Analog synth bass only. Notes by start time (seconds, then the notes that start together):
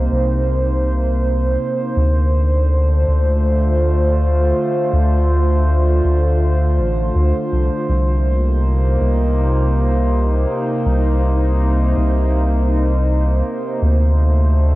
0.11 C2
1.96 D2
3.08 D2
4.93 D2
6.04 D2
6.78 A1
7.15 D2
7.52 C2
7.89 C2
9.01 C2
10.86 C2
11.97 C2
13.82 D2